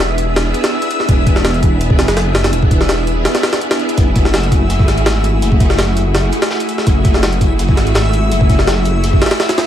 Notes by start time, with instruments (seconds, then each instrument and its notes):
Already playing: detuned saw bass E1, string machine B3 D4 E4 G#4, synth texture E5 E6
0.18 string machine B3 D4 E4 G#4, closed hi-hat
0.36 snare, closed hi-hat
0.54 closed hi-hat
0.64 snare, closed hi-hat
0.82 closed hi-hat
0.91 closed hi-hat
1.00 snare
1.08 detuned saw bass E1, string machine B3 D4 E4 G#4, kick, closed hi-hat
1.27 kick, closed hi-hat
1.36 snare
1.45 snare, closed hi-hat
1.54 closed hi-hat
1.63 string machine B3 D4 E4 G#4, kick, closed hi-hat
1.81 closed hi-hat
1.90 kick
1.99 detuned saw bass F#1, snare, closed hi-hat
2.08 snare, closed hi-hat
2.17 snare, closed hi-hat
2.35 snare, closed hi-hat
2.44 snare, closed hi-hat
2.53 detuned saw bass E1, string machine B3 D4 E4 G#4, closed hi-hat
2.62 kick
2.71 kick, closed hi-hat
2.81 snare
2.89 snare, closed hi-hat
3.07 string machine B3 D4 E4 G#4, closed hi-hat
3.25 snare, closed hi-hat
3.35 snare, closed hi-hat
3.43 snare, closed hi-hat
3.53 snare, closed hi-hat
3.61 closed hi-hat
3.71 string machine B3 D4 E4 G#4, snare, closed hi-hat
3.79 closed hi-hat
3.89 closed hi-hat
3.97 detuned saw bass F#1, string machine A3 E4 F#4 G#4, synth texture E5 E6, kick, closed hi-hat
4.16 kick, closed hi-hat
4.25 snare, closed hi-hat
4.34 snare, closed hi-hat
4.43 closed hi-hat
4.52 string machine A3 E4 F#4 G#4, kick, closed hi-hat
4.70 closed hi-hat
4.79 kick, closed hi-hat
4.88 detuned saw bass G#1, snare, closed hi-hat
4.98 closed hi-hat
5.06 snare, closed hi-hat
5.24 closed hi-hat
5.42 detuned saw bass F#1, string machine A3 E4 F#4 G#4, closed hi-hat
5.52 kick
5.60 kick, closed hi-hat
5.70 snare
5.77 snare, closed hi-hat
5.96 string machine A3 E4 F#4 G#4, closed hi-hat
6.14 snare, closed hi-hat
6.32 closed hi-hat
6.42 snare, closed hi-hat
6.51 snare, closed hi-hat
6.60 closed hi-hat
6.69 closed hi-hat
6.78 snare
6.87 detuned saw bass F#1, string machine A3 E4 F#4 G#4, kick, closed hi-hat
7.04 kick, closed hi-hat
7.14 snare, closed hi-hat
7.23 snare, closed hi-hat
7.33 closed hi-hat
7.41 string machine A3 E4 F#4 G#4, kick, closed hi-hat
7.59 closed hi-hat
7.68 kick, closed hi-hat
7.77 detuned saw bass G#1, snare, closed hi-hat
7.87 closed hi-hat
7.95 snare, closed hi-hat
8.13 closed hi-hat
8.31 detuned saw bass F#1, string machine A3 E4 F#4 G#4, closed hi-hat
8.41 kick
8.49 kick, closed hi-hat
8.59 snare
8.68 snare, closed hi-hat
8.85 string machine A3 E4 F#4 G#4, closed hi-hat
9.04 closed hi-hat
9.13 kick
9.22 snare, closed hi-hat
9.26 snare, closed hi-hat
9.31 snare, closed hi-hat
9.40 snare, closed hi-hat
9.49 snare, closed hi-hat
9.58 snare, closed hi-hat